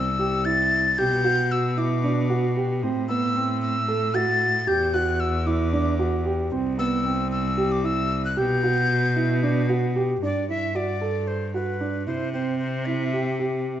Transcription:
0.00 1.00 C2 medium
0.00 0.47 E6 medium
0.19 0.38 G4 medium
0.45 0.83 E4 medium
0.45 1.00 A6 loud
0.98 2.84 B2 medium
0.98 1.17 G4 medium
0.98 1.53 G6 loud
1.24 1.62 F#4 medium
1.52 1.80 E6 medium
1.77 1.96 E4 medium
1.77 2.57 D6 medium
2.04 2.23 D4 medium
2.30 2.49 F#4 medium
2.57 2.75 G4 medium
2.83 4.69 A2 medium
2.83 3.02 C4 medium
3.09 3.28 B3 medium
3.09 3.58 E6 medium
3.36 3.73 C4 medium
3.62 4.16 E6 loud
3.88 4.07 A4 medium
4.14 4.52 F#4 medium
4.14 4.69 A6 loud
4.67 6.53 E2 medium
4.67 4.86 G4 medium
4.67 4.95 G6 loud
4.94 5.32 F#4 medium
4.94 5.22 F#6 medium
5.20 5.48 E6 medium
5.46 5.65 E4 medium
5.46 6.26 D6 medium
5.73 5.92 D4 medium
5.99 6.18 F#4 medium
6.25 6.44 G4 medium
6.52 8.38 C2 medium
6.52 6.71 C4 medium
6.78 6.97 B3 medium
6.78 7.28 E6 medium
7.05 7.43 C4 medium
7.32 7.73 E6 medium
7.57 7.76 G4 medium
7.72 7.87 D6 medium
7.84 8.22 E4 medium
7.84 8.24 E6 loud
8.25 8.40 F#6 medium
8.37 10.18 B2 medium
8.37 8.56 G4 medium
8.37 9.70 G6 loud
8.63 9.01 F#4 medium
9.16 9.35 E4 medium
9.43 9.62 D4 medium
9.69 9.88 F#4 medium
9.96 10.15 G4 medium
10.22 12.09 G2 medium
10.22 10.41 D4 medium
10.22 10.47 D5 medium
10.49 10.68 E4 medium
10.49 10.77 E5 medium
10.75 10.94 F#4 medium
10.75 11.29 D5 medium
11.01 11.39 A4 medium
11.27 11.54 C5 medium
11.54 11.73 F#4 medium
11.54 12.04 B4 medium
11.81 12.00 D4 medium
12.07 13.80 C3 medium
12.07 12.26 E4 medium
12.07 12.32 C5 medium
12.33 12.72 C4 medium
12.33 12.58 C5 medium
12.59 12.87 C5 medium
12.86 13.06 E4 medium
12.86 13.66 E5 medium
13.13 13.32 G4 medium
13.39 13.77 G4 medium

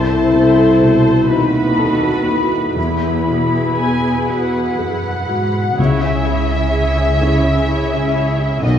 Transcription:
0.00 1.25 C2 medium
0.00 1.26 C2 medium
0.00 1.25 E4 medium
0.00 1.29 A4 medium
0.00 0.31 C5 medium
0.00 1.25 C5 medium
0.00 1.29 A5 medium
0.33 1.10 C3 soft
0.33 0.81 C5 soft
0.80 1.58 B2 soft
0.80 1.30 C5 medium
1.27 2.77 D#2 soft
1.27 2.73 D#4 medium
1.27 2.08 E4 soft
1.27 2.77 F#4 soft
1.27 1.77 B4 soft
1.27 2.77 B4 soft
1.27 2.73 B5 medium
1.78 2.27 A4 soft
1.78 2.58 A4 soft
2.27 2.77 E4 soft
2.27 2.76 B4 soft
2.76 4.15 E2 soft
2.76 5.74 E2 soft
2.76 4.29 E4 medium
2.76 5.58 E4 soft
2.76 5.57 G#4 soft
2.76 5.54 B4 soft
2.76 5.54 B5 soft
3.28 4.09 B2 soft
3.78 4.59 B3 soft
3.78 4.25 G#5 medium
4.28 4.75 E2 soft
4.28 5.09 F#4 soft
4.28 5.79 F#5 medium
4.78 5.28 F#2 soft
4.78 5.58 G#4 soft
5.29 5.77 G#2 soft
5.29 5.78 F#4 soft
5.77 8.59 C#2 soft
5.77 7.18 C#2 soft
5.77 8.59 C#3 soft
5.77 6.00 E4 soft
5.77 6.00 G#4 soft
5.77 6.00 C#5 soft
5.77 8.63 E5 medium
6.02 6.26 C#4 soft
6.02 6.25 E4 soft
6.02 6.27 G#4 soft
6.02 6.27 E5 soft
6.26 6.50 E4 soft
6.26 6.49 E4 soft
6.26 6.51 G#4 soft
6.26 6.50 C#5 soft
6.49 6.74 C#4 soft
6.49 6.72 E4 soft
6.49 6.74 G#4 soft
6.49 6.74 E5 soft
6.73 6.96 E4 soft
6.73 6.96 G#4 soft
6.73 6.96 C#5 soft
6.97 7.21 C#4 soft
6.97 7.21 E4 soft
6.97 7.22 G#4 soft
6.97 7.22 E5 soft
7.21 8.59 C#4 soft
7.21 7.45 E4 soft
7.21 8.59 E4 soft
7.21 7.44 E4 soft
7.21 8.59 G#4 soft
7.21 7.46 G#4 soft
7.21 7.45 C#5 soft
7.43 7.69 C#4 soft
7.43 7.69 E4 soft
7.43 7.68 G#4 soft
7.43 7.68 E5 soft
7.67 7.90 E4 soft
7.67 7.91 E4 soft
7.67 7.91 G#4 soft
7.67 7.90 C#5 soft
7.91 8.17 C#4 soft
7.91 8.16 E4 soft
7.91 8.16 G#4 soft
7.91 8.16 E5 soft
8.14 8.39 E4 soft
8.14 8.40 G#4 soft
8.14 8.39 C#5 soft
8.38 8.64 C#4 soft
8.38 8.63 E4 soft
8.38 8.62 G#4 soft
8.38 8.63 E5 soft
8.62 8.79 B1 medium
8.62 8.79 B1 soft
8.62 8.79 B2 soft
8.62 8.79 D#3 soft
8.62 8.79 D#4 soft
8.62 8.79 F#4 soft
8.62 8.79 D#5 soft
8.62 8.79 D#5 medium

